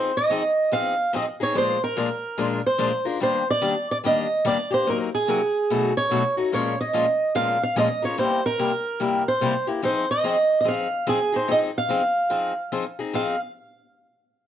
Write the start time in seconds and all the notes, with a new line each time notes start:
Already playing: F3 C4 D#4 G#4 C5
0.17 D#5
0.30 F3 C4 D#4 G#4
0.72 F3 C4 D#4 G#4 F5
1.13 F3 C4 D#4 G#4 D#5
1.40 C4 D#4 G#4 C#5
1.55 A#2 F3 G#3 D4 F4 A#4 C5
1.84 A#4
1.97 A#2 F3 G#3 D4 F4 A#4
2.38 A#2 F3 G#3 D4 F4 A#4
2.66 C5
2.78 A#2 F3 G#3 D4 F4 A#4
3.05 G#3 D4 F4 A#4
3.20 D#3 G3 A#3 D4 G4 C5
3.50 D5
3.62 D#3 G3 A#3 D4 G4
3.91 D5
4.04 D#3 G3 A#3 D4 G4 D#5
4.45 D#3 G3 A#3 D4 G4 D5
4.71 A#3 D4 G4 C5
4.87 C3 F#3 A#3 D#4 A#4
5.15 G#4
5.28 C3 F#3 A#3 D#4 A#4
5.70 B2 F#3 A3 D#4 F#4
5.97 C#5
6.11 B2 F#3 A3 D#4 F#4
6.37 A3 D#4 F#4
6.52 A#2 F3 G#3 C#4 F4 A#4 C#5
6.81 D#5
6.93 A#2 F3 G#3 C#4 F4 A#4
7.35 A#2 F3 G#3 C#4 F4 A#4 F5
7.63 F5
7.76 A#2 F3 G#3 C#4 F4 A#4 D#5
8.02 G#3 C#4 F4 A#4 C#5
8.18 C3 G3 A#3 E4 G4 C5
8.46 A#4
8.59 C3 G3 A#3 E4 G4
9.00 C3 G3 A#3 E4 G4
9.28 C5
9.41 C3 G3 A#3 E4 G4
9.67 A#3 E4 G4
9.83 F3 C4 D#4 G#4 C5
10.11 D#5
10.24 F3 C4 D#4 G#4
10.61 F3 D#5
10.65 C4 D#4 G#4 F5
11.07 F3 C4 D#4 G#4
11.32 C4 D#4 G#4 C5
11.48 F3 C4 D#4 G#4 D#5
11.78 F5
11.89 F3 C4 D#4 G#4
12.30 F3 C4 D#4 G#4
12.72 F3 C4 D#4 G#4
12.99 C4 D#4 G#4
13.13 F3 C4 D#4 G#4 F5